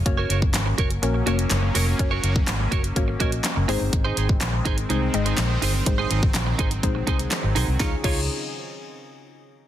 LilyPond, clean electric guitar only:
\new Staff \with { instrumentName = "Clean electric guitar" } { \time 4/4 \key aes \mixolydian \tempo 4 = 124 r16 <ges' bes' des''>16 <ges' bes' des''>16 r8. <ges' bes' des''>16 r8. <ges' bes' des''>16 r8. <ges' bes' des''>16 r16 | r16 <ges' bes' des''>16 <ges' bes' des''>16 r8. <ges' bes' des''>16 r8. <ges' bes' des''>16 r8. <ees' aes' c''>16 r16 | r16 <ees' aes' c''>16 <ees' aes' c''>16 r8. <ees' aes' c''>16 r16 <ees' aes' c''>16 r8 <ees' aes' c''>16 r8 <ees' aes' c''>16 r16 | r16 <ees' aes' c''>16 <ees' aes' c''>16 r8. <ees' aes' c''>16 r8. <ees' aes' c''>16 r8. <ees' aes' c''>16 r16 |
<ees' f' des''>16 r16 <ees' f' des''>16 r2. r16 | }